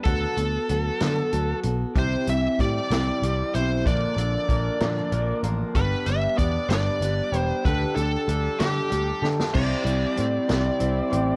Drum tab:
CC |------------|------------|------------|------------|
HH |x-x-x-x-x-x-|x-x-x-x-x-x-|x-x-x-x-x-x-|x-x-x-x-x-x-|
SD |------o-----|------o-----|------o-----|------o-----|
BD |o-----------|o---o-------|o---o-------|o---o-------|

CC |------------|x-----------|
HH |x-x-x-x-x---|--x-x-x-x-x-|
SD |------o---oo|------o-----|
BD |o-----------|o-----------|